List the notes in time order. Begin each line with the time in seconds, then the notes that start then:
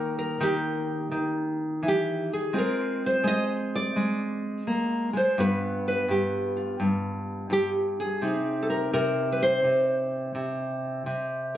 Already playing: D#3 A#3 A#4
0.19 A#4
0.41 D#3 G4
1.11 D#3
1.83 E3
1.88 G4
2.33 G#4
2.53 G#3 C4 F4
2.58 A#4
3.06 C5
3.24 G#3 D#5
3.75 D5
3.96 G#3
4.67 A#3
5.13 G#3 C5
5.38 G2 B3 F4 B4
5.88 B4
6.08 G2 G4
6.57 F4
6.80 G2
7.50 G2 G4
8.00 G#4
8.21 C3 C4 D#4
8.63 A4
8.70 A#4
8.93 C3 A#4
9.32 B4
9.43 C5
9.64 C3
10.35 C3
11.06 C3